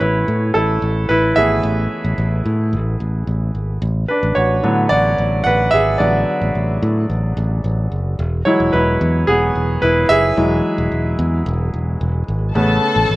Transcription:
0.00 0.23 A1 medium
0.00 1.36 E3 soft
0.00 1.37 A3 soft
0.00 1.38 B3 medium
0.00 0.02 E4 medium
0.00 0.52 E4 medium
0.00 0.56 B4 medium
0.00 3.84 C#5 medium
0.28 0.50 A2 loud
0.54 0.77 A1 medium
0.54 1.06 E4 medium
0.54 1.05 A4 medium
0.82 1.04 A1 medium
1.09 1.32 A1 medium
1.09 1.35 E4 medium
1.09 1.37 B4 medium
1.36 1.59 G#1 medium
1.36 3.51 E3 soft
1.36 3.51 A3 soft
1.36 3.51 B3 medium
1.36 2.42 G#4 medium
1.36 2.41 E5 medium
1.63 1.86 A1 medium
2.04 2.16 A1 medium
2.18 2.40 A1 medium
2.45 2.74 A2 medium
2.73 2.95 A1 medium
3.00 3.23 A1 medium
3.27 3.50 A1 medium
3.55 3.77 G#1 medium
3.82 4.04 A1 loud
4.08 4.35 D4 medium
4.08 4.37 B4 medium
4.23 4.34 A1 medium
4.35 4.59 A1 medium
4.35 4.88 F#4 medium
4.35 4.92 C#5 medium
4.63 4.86 A2 medium
4.63 5.00 D3 medium
4.63 5.00 F#3 soft
4.63 5.01 B3 medium
4.89 5.13 A1 medium
4.89 5.42 F#4 medium
4.89 5.46 D5 medium
5.18 5.41 A1 medium
5.44 5.68 A1 medium
5.44 5.72 B4 medium
5.44 5.70 F#5 loud
5.71 5.95 G#1 medium
5.71 5.99 G#4 medium
5.71 5.97 E5 loud
5.98 6.23 A1 medium
5.98 6.24 D3 soft
5.98 6.25 F#3 soft
5.98 6.78 B3 soft
5.98 7.06 F#4 medium
5.98 7.04 D5 medium
6.41 6.53 A1 medium
6.55 6.77 A1 medium
6.82 7.05 A2 loud
7.10 7.32 A1 medium
7.37 7.59 A1 medium
7.64 7.86 A1 medium
7.92 8.14 F#1 medium
8.19 8.41 E1 medium
8.45 10.35 E3 medium
8.45 10.36 F#3 medium
8.45 10.36 G#3 medium
8.45 8.53 E4 medium
8.45 8.51 C#5 medium
8.60 8.71 E1 medium
8.73 8.96 E1 medium
8.73 9.25 E4 medium
8.73 9.29 B4 medium
9.01 9.23 E2 medium
9.27 9.50 E1 medium
9.27 9.79 B3 medium
9.27 9.78 G#4 loud
9.55 9.78 E1 medium
9.82 10.05 E1 medium
9.82 10.08 E4 medium
9.82 10.10 B4 medium
10.09 10.32 F#1 medium
10.09 11.15 G#4 medium
10.09 11.14 E5 loud
10.37 10.60 E1 loud
10.37 11.15 E3 medium
10.37 11.15 F#3 soft
10.37 11.15 G#3 medium
10.78 10.89 E1 medium
10.92 11.14 E1 medium
11.19 11.41 E2 loud
11.46 11.68 E1 loud
11.74 11.96 E1 medium
12.01 12.23 E1 medium
12.28 12.51 G#1 medium
12.55 12.78 A1 loud
12.55 13.16 C#3 medium
12.55 13.16 A3 soft
12.55 13.16 B3 medium
12.55 13.16 A4 medium
12.55 13.16 A5 medium
12.96 13.07 A1 medium
13.09 13.16 A1 medium

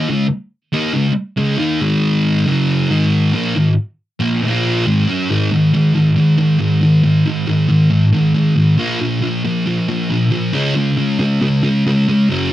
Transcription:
0.09 0.25 C#3 medium
0.09 0.25 G#3 medium
0.73 0.93 D#3 medium
0.73 0.94 A#3 loud
0.73 0.94 D#4 loud
0.94 1.11 C#3 medium
0.94 1.11 G#3 medium
1.37 1.58 C#3 medium
1.37 1.58 G#3 medium
1.37 1.59 C#4 loud
1.58 1.79 D#3 medium
1.58 1.80 A#3 loud
1.58 1.80 D#4 loud
1.81 2.45 G#2 medium
1.81 2.45 D#3 loud
1.81 2.46 G#3 loud
2.47 2.89 F#2 medium
2.47 2.89 C#3 loud
2.47 2.89 F#3 loud
2.89 3.32 G#2 loud
2.89 3.33 D#3 loud
2.89 3.33 G#3 loud
3.33 3.54 A#2 medium
3.33 3.54 F3 medium
3.33 3.54 A#3 medium
3.55 3.72 G#2 medium
3.55 3.72 D#3 medium
4.20 4.41 A#2 medium
4.20 4.41 F3 medium
4.20 4.41 A#3 loud
4.42 4.84 A#2 medium
4.42 4.85 F3 loud
4.42 4.85 A#3 loud
4.86 5.06 G#2 medium
4.86 5.07 D#3 medium
4.86 5.07 G#3 loud
5.08 5.28 F#3 medium
5.08 5.29 C#4 medium
5.08 5.29 F#4 medium
5.29 5.49 G#2 medium
5.29 5.49 D#3 medium
5.29 5.50 G#3 medium
5.52 5.71 G#2 medium
5.52 5.71 D#3 medium
5.74 5.92 G#2 medium
5.74 5.93 D#3 medium
5.94 6.13 G#2 medium
5.94 6.14 D#3 medium
6.16 6.35 G#2 medium
6.16 6.36 D#3 medium
6.38 6.57 G#2 medium
6.38 6.57 D#3 medium
6.59 6.78 G#2 medium
6.59 6.79 D#3 medium
6.81 7.00 G#2 medium
6.81 7.01 D#3 medium
7.03 7.23 G#2 medium
7.03 7.23 D#3 medium
7.25 7.45 G#2 medium
7.25 7.45 D#3 medium
7.46 7.66 G#2 medium
7.46 7.66 D#3 medium
7.68 7.88 G#2 medium
7.68 7.88 D#3 medium
7.90 8.10 G#2 medium
7.90 8.10 D#3 medium
8.13 8.32 G#2 medium
8.13 8.32 D#3 medium
8.35 8.54 G#2 medium
8.35 8.54 D#3 medium
8.56 8.75 G#2 medium
8.56 8.76 D#3 medium
8.78 8.98 A#2 medium
8.78 8.98 F3 medium
8.78 8.99 A#3 medium
9.01 9.20 A#2 soft
9.01 9.20 F3 medium
9.22 9.41 A#2 medium
9.22 9.42 F3 medium
9.44 9.64 A#2 soft
9.44 9.64 F3 medium
9.66 9.85 A#2 medium
9.66 9.86 F3 medium
9.88 10.08 A#2 medium
9.88 10.08 F3 medium
10.10 10.29 A#2 medium
10.10 10.30 F3 medium
10.31 10.51 A#2 medium
10.31 10.51 F3 medium
10.53 10.74 C#3 medium
10.53 10.74 G#3 medium
10.53 10.74 C#4 medium
10.75 10.95 C#3 medium
10.75 10.95 G#3 medium
10.97 11.17 C#3 medium
10.97 11.17 G#3 medium
11.19 11.39 C#3 medium
11.19 11.39 G#3 medium
11.41 11.61 C#3 medium
11.41 11.61 G#3 medium
11.63 11.83 C#3 medium
11.63 11.83 G#3 medium
11.86 12.05 C#3 medium
11.86 12.06 G#3 medium
12.08 12.27 C#3 medium
12.08 12.28 G#3 medium
12.29 12.50 F#2 medium
12.29 12.50 C#3 medium
12.29 12.51 F#3 medium

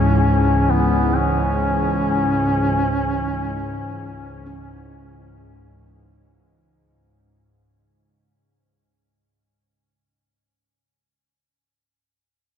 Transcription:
0.00 2.12 C#2 medium
0.00 6.90 C#2 medium
0.00 6.90 G#2 medium
0.00 6.81 E3 medium
0.00 6.81 G#3 medium
0.00 0.73 C#4 medium
0.00 6.82 E4 medium
0.00 6.81 G#4 medium
0.71 1.19 B3 medium
1.18 5.87 C#4 medium
4.46 10.09 C#4 medium

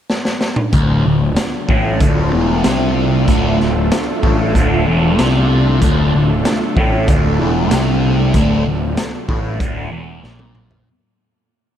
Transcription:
0.10 snare medium
0.25 snare medium
0.41 snare medium
0.56 mid tom loud
0.73 1.03 D1 loud
0.73 1.04 D2 medium
0.73 10.82 A3 medium
0.73 10.82 D4 medium
0.73 10.82 F4 medium
0.73 10.82 A4 medium
0.73 kick loud
0.73 closed hi-hat medium
1.05 1.35 D1 medium
1.05 1.31 D2 medium
1.36 snare loud
1.36 closed hi-hat medium
1.69 1.99 A1 loud
1.69 2.00 A2 loud
1.69 kick loud
2.00 2.30 D1 medium
2.00 2.32 D2 loud
2.00 kick loud
2.00 closed hi-hat medium
2.33 2.62 E1 medium
2.33 2.64 E2 loud
2.64 3.25 C2 medium
2.64 3.27 C3 medium
2.64 snare loud
2.64 closed hi-hat medium
3.28 3.58 D1 medium
3.28 3.59 D2 loud
3.28 kick loud
3.28 closed hi-hat medium
3.60 3.90 D1 medium
3.60 3.85 D2 medium
3.60 snare soft
3.92 snare loud
3.92 closed hi-hat medium
4.23 4.53 A1 medium
4.23 4.54 A2 loud
4.23 kick medium
4.54 4.85 D1 medium
4.54 4.85 D2 loud
4.54 kick medium
4.54 closed hi-hat medium
4.87 5.17 E1 medium
4.87 5.19 E2 loud
5.19 5.78 C2 loud
5.19 5.81 C3 loud
5.19 snare loud
5.19 closed hi-hat medium
5.82 6.11 D1 medium
5.82 6.12 D2 loud
5.82 kick loud
5.82 closed hi-hat medium
6.14 6.43 D1 medium
6.14 6.39 D2 medium
6.45 snare loud
6.45 closed hi-hat medium
6.76 7.06 A1 loud
6.76 7.08 A2 loud
6.76 kick loud
7.08 7.37 D1 medium
7.08 7.39 D2 loud
7.08 kick loud
7.08 closed hi-hat medium
7.40 7.70 E1 medium
7.40 7.72 E2 loud
7.71 8.31 C2 medium
7.71 8.34 C3 loud
7.71 snare loud
7.71 closed hi-hat medium
8.34 8.64 D1 medium
8.34 8.65 D2 loud
8.34 kick loud
8.34 closed hi-hat medium
8.66 8.95 D1 medium
8.66 8.91 D2 medium
8.97 snare loud
8.97 closed hi-hat medium
9.29 9.58 A1 medium
9.29 9.59 A2 loud
9.29 kick loud
9.60 9.90 D1 medium
9.60 9.91 D2 loud
9.60 kick loud
9.60 closed hi-hat medium
9.91 10.21 E1 medium
9.91 10.22 E2 medium
10.23 10.83 A#1 loud
10.23 10.85 A#2 medium
10.23 snare medium
10.39 high tom medium
10.55 mid tom medium
10.71 floor tom medium

